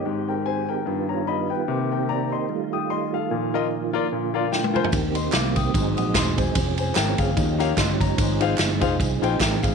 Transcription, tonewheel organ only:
0, 0, Header, 1, 2, 480
1, 0, Start_track
1, 0, Tempo, 406504
1, 61, Time_signature, 4, 2, 24, 8
1, 11510, End_track
2, 0, Start_track
2, 0, Title_t, "Tonewheel organ"
2, 0, Program_c, 0, 16
2, 0, Note_on_c, 0, 51, 70
2, 0, Note_on_c, 0, 67, 77
2, 63, Note_on_c, 0, 60, 65
2, 71, Note_on_c, 0, 56, 64
2, 994, Note_off_c, 0, 51, 0
2, 994, Note_off_c, 0, 67, 0
2, 1013, Note_off_c, 0, 60, 0
2, 1017, Note_off_c, 0, 56, 0
2, 1024, Note_on_c, 0, 65, 78
2, 1028, Note_on_c, 0, 55, 66
2, 1030, Note_on_c, 0, 51, 67
2, 1030, Note_on_c, 0, 59, 67
2, 1974, Note_off_c, 0, 65, 0
2, 1976, Note_off_c, 0, 55, 0
2, 1976, Note_off_c, 0, 59, 0
2, 1980, Note_on_c, 0, 58, 64
2, 1983, Note_on_c, 0, 67, 76
2, 1986, Note_on_c, 0, 60, 68
2, 2931, Note_off_c, 0, 58, 0
2, 2933, Note_off_c, 0, 67, 0
2, 2934, Note_off_c, 0, 60, 0
2, 2938, Note_on_c, 0, 57, 62
2, 2939, Note_on_c, 0, 55, 67
2, 2940, Note_on_c, 0, 65, 80
2, 3887, Note_off_c, 0, 65, 0
2, 3890, Note_off_c, 0, 57, 0
2, 3891, Note_off_c, 0, 55, 0
2, 3894, Note_on_c, 0, 58, 66
2, 3898, Note_on_c, 0, 53, 64
2, 3901, Note_on_c, 0, 65, 81
2, 4828, Note_off_c, 0, 51, 0
2, 4846, Note_off_c, 0, 65, 0
2, 4859, Note_on_c, 0, 50, 64
2, 4860, Note_on_c, 0, 65, 76
2, 5801, Note_off_c, 0, 53, 0
2, 5811, Note_off_c, 0, 50, 0
2, 5812, Note_off_c, 0, 65, 0
2, 5813, Note_on_c, 0, 67, 78
2, 5819, Note_on_c, 0, 60, 65
2, 5820, Note_on_c, 0, 51, 71
2, 6750, Note_off_c, 0, 58, 0
2, 6768, Note_off_c, 0, 67, 0
2, 6772, Note_off_c, 0, 51, 0
2, 6778, Note_on_c, 0, 54, 66
2, 6781, Note_on_c, 0, 63, 67
2, 6784, Note_on_c, 0, 68, 81
2, 7722, Note_off_c, 0, 60, 0
2, 7731, Note_off_c, 0, 54, 0
2, 7733, Note_off_c, 0, 63, 0
2, 7744, Note_on_c, 0, 61, 66
2, 7749, Note_on_c, 0, 60, 64
2, 7754, Note_on_c, 0, 53, 72
2, 8682, Note_off_c, 0, 61, 0
2, 8685, Note_off_c, 0, 68, 0
2, 8690, Note_off_c, 0, 53, 0
2, 8696, Note_on_c, 0, 61, 64
2, 8697, Note_off_c, 0, 60, 0
2, 8701, Note_on_c, 0, 63, 63
2, 8704, Note_on_c, 0, 53, 70
2, 8704, Note_on_c, 0, 67, 74
2, 9650, Note_off_c, 0, 61, 0
2, 9654, Note_off_c, 0, 67, 0
2, 9662, Note_on_c, 0, 60, 69
2, 9668, Note_on_c, 0, 68, 83
2, 11510, Note_off_c, 0, 53, 0
2, 11510, Note_off_c, 0, 60, 0
2, 11510, Note_off_c, 0, 63, 0
2, 11510, Note_off_c, 0, 68, 0
2, 11510, End_track
0, 0, End_of_file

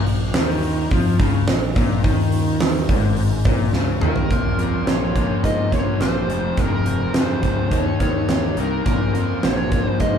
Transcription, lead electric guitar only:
0, 0, Header, 1, 2, 480
1, 0, Start_track
1, 0, Key_signature, -5, "minor"
1, 0, Tempo, 567644
1, 1730, Time_signature, 4, 2, 24, 8
1, 8611, End_track
2, 0, Start_track
2, 0, Title_t, "Lead electric guitar"
2, 0, Program_c, 0, 29
2, 3397, Note_on_c, 0, 70, 83
2, 4118, Note_on_c, 0, 73, 70
2, 4142, Note_off_c, 0, 70, 0
2, 4568, Note_off_c, 0, 73, 0
2, 4608, Note_on_c, 0, 75, 84
2, 4839, Note_off_c, 0, 75, 0
2, 4843, Note_on_c, 0, 73, 73
2, 5084, Note_off_c, 0, 73, 0
2, 5087, Note_on_c, 0, 72, 75
2, 5564, Note_on_c, 0, 70, 73
2, 5582, Note_off_c, 0, 72, 0
2, 6045, Note_on_c, 0, 72, 80
2, 6061, Note_off_c, 0, 70, 0
2, 6535, Note_off_c, 0, 72, 0
2, 6538, Note_on_c, 0, 73, 81
2, 7270, Note_on_c, 0, 70, 77
2, 7278, Note_off_c, 0, 73, 0
2, 7989, Note_on_c, 0, 73, 82
2, 8006, Note_off_c, 0, 70, 0
2, 8345, Note_off_c, 0, 73, 0
2, 8345, Note_on_c, 0, 72, 82
2, 8461, Note_off_c, 0, 72, 0
2, 8464, Note_on_c, 0, 75, 88
2, 8611, Note_off_c, 0, 75, 0
2, 8611, End_track
0, 0, End_of_file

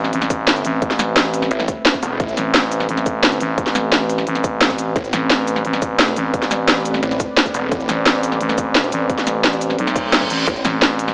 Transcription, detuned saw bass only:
0, 0, Header, 1, 2, 480
1, 0, Start_track
1, 0, Key_signature, 0, "minor"
1, 0, Tempo, 344828
1, 1141, Time_signature, 4, 2, 24, 8
1, 15505, End_track
2, 0, Start_track
2, 0, Title_t, "Detuned saw bass"
2, 0, Program_c, 0, 39
2, 2101, Note_on_c, 0, 33, 97
2, 2322, Note_off_c, 0, 33, 0
2, 2821, Note_on_c, 0, 28, 97
2, 3042, Note_off_c, 0, 28, 0
2, 3061, Note_on_c, 0, 33, 98
2, 3282, Note_off_c, 0, 33, 0
2, 6901, Note_on_c, 0, 33, 98
2, 7122, Note_off_c, 0, 33, 0
2, 9781, Note_on_c, 0, 33, 95
2, 10002, Note_off_c, 0, 33, 0
2, 10502, Note_on_c, 0, 28, 94
2, 10722, Note_off_c, 0, 28, 0
2, 10741, Note_on_c, 0, 33, 100
2, 10962, Note_off_c, 0, 33, 0
2, 14581, Note_on_c, 0, 33, 100
2, 14802, Note_off_c, 0, 33, 0
2, 15505, End_track
0, 0, End_of_file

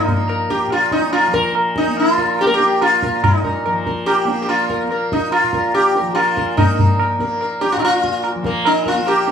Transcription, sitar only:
0, 0, Header, 1, 2, 480
1, 0, Start_track
1, 0, Tempo, 418410
1, 1782, Time_signature, 4, 2, 24, 8
1, 10687, End_track
2, 0, Start_track
2, 0, Title_t, "Sitar"
2, 0, Program_c, 0, 104
2, 0, Note_on_c, 0, 63, 82
2, 337, Note_on_c, 0, 70, 38
2, 559, Note_off_c, 0, 70, 0
2, 572, Note_off_c, 0, 63, 0
2, 577, Note_on_c, 0, 67, 81
2, 824, Note_off_c, 0, 67, 0
2, 830, Note_on_c, 0, 65, 78
2, 1054, Note_off_c, 0, 65, 0
2, 1058, Note_on_c, 0, 63, 83
2, 1288, Note_off_c, 0, 63, 0
2, 1293, Note_on_c, 0, 65, 94
2, 1533, Note_on_c, 0, 70, 78
2, 1544, Note_off_c, 0, 65, 0
2, 1761, Note_off_c, 0, 70, 0
2, 2037, Note_on_c, 0, 63, 77
2, 2278, Note_off_c, 0, 63, 0
2, 2290, Note_on_c, 0, 65, 84
2, 2510, Note_on_c, 0, 70, 33
2, 2732, Note_off_c, 0, 70, 0
2, 2764, Note_on_c, 0, 67, 97
2, 2773, Note_off_c, 0, 65, 0
2, 2827, Note_off_c, 0, 67, 0
2, 2831, Note_on_c, 0, 70, 82
2, 2904, Note_off_c, 0, 70, 0
2, 2913, Note_on_c, 0, 67, 98
2, 3230, Note_off_c, 0, 67, 0
2, 3235, Note_on_c, 0, 65, 90
2, 3480, Note_on_c, 0, 70, 37
2, 3680, Note_off_c, 0, 65, 0
2, 3699, Note_off_c, 0, 70, 0
2, 3713, Note_on_c, 0, 63, 72
2, 3951, Note_on_c, 0, 70, 37
2, 4174, Note_off_c, 0, 70, 0
2, 4194, Note_on_c, 0, 70, 37
2, 4387, Note_off_c, 0, 63, 0
2, 4416, Note_off_c, 0, 70, 0
2, 4437, Note_on_c, 0, 70, 31
2, 4658, Note_off_c, 0, 70, 0
2, 4661, Note_on_c, 0, 67, 91
2, 5059, Note_off_c, 0, 67, 0
2, 5073, Note_on_c, 0, 67, 61
2, 5144, Note_off_c, 0, 67, 0
2, 5149, Note_on_c, 0, 65, 85
2, 5393, Note_on_c, 0, 70, 34
2, 5597, Note_off_c, 0, 65, 0
2, 5616, Note_off_c, 0, 70, 0
2, 5640, Note_on_c, 0, 70, 39
2, 5859, Note_off_c, 0, 70, 0
2, 5881, Note_on_c, 0, 63, 73
2, 6098, Note_off_c, 0, 63, 0
2, 6103, Note_on_c, 0, 65, 82
2, 6355, Note_on_c, 0, 70, 35
2, 6576, Note_off_c, 0, 70, 0
2, 6587, Note_off_c, 0, 65, 0
2, 6591, Note_on_c, 0, 67, 98
2, 6843, Note_on_c, 0, 70, 37
2, 7047, Note_off_c, 0, 67, 0
2, 7051, Note_on_c, 0, 65, 89
2, 7060, Note_off_c, 0, 70, 0
2, 7301, Note_on_c, 0, 70, 38
2, 7527, Note_off_c, 0, 70, 0
2, 7535, Note_off_c, 0, 65, 0
2, 7539, Note_on_c, 0, 63, 77
2, 8215, Note_off_c, 0, 63, 0
2, 8264, Note_on_c, 0, 70, 38
2, 8487, Note_off_c, 0, 70, 0
2, 8512, Note_on_c, 0, 70, 36
2, 8728, Note_off_c, 0, 70, 0
2, 8732, Note_on_c, 0, 67, 90
2, 8848, Note_off_c, 0, 67, 0
2, 8860, Note_on_c, 0, 65, 91
2, 8932, Note_off_c, 0, 65, 0
2, 8937, Note_on_c, 0, 63, 76
2, 8996, Note_off_c, 0, 63, 0
2, 9000, Note_on_c, 0, 65, 102
2, 9530, Note_off_c, 0, 65, 0
2, 9699, Note_on_c, 0, 70, 39
2, 9711, Note_on_c, 0, 58, 75
2, 9914, Note_off_c, 0, 70, 0
2, 9928, Note_on_c, 0, 70, 39
2, 9939, Note_on_c, 0, 63, 83
2, 9949, Note_off_c, 0, 58, 0
2, 10152, Note_off_c, 0, 70, 0
2, 10168, Note_on_c, 0, 70, 37
2, 10181, Note_off_c, 0, 63, 0
2, 10186, Note_on_c, 0, 65, 83
2, 10391, Note_off_c, 0, 70, 0
2, 10405, Note_on_c, 0, 70, 35
2, 10416, Note_on_c, 0, 67, 88
2, 10424, Note_off_c, 0, 65, 0
2, 10629, Note_off_c, 0, 70, 0
2, 10649, Note_on_c, 0, 70, 33
2, 10687, Note_off_c, 0, 67, 0
2, 10687, Note_off_c, 0, 70, 0
2, 10687, End_track
0, 0, End_of_file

